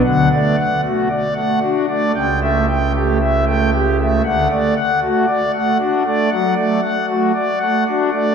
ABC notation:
X:1
M:4/4
L:1/16
Q:1/4=58
K:D
V:1 name="Pipe organ"
[D,f] [A,d] f [A,F] d [A,f] [DF] [A,d] [C,g] [A,e] g [A,G] e [A,g] G [A,e] | [D,f] [A,d] f [A,F] d [A,f] [DF] [A,d] [F,f] [A,d] f [A,F] d [A,f] [DF] [A,d] |]
V:2 name="Pipe organ" clef=bass
D,, z6 z C,,8 | D,, z12 z3 |]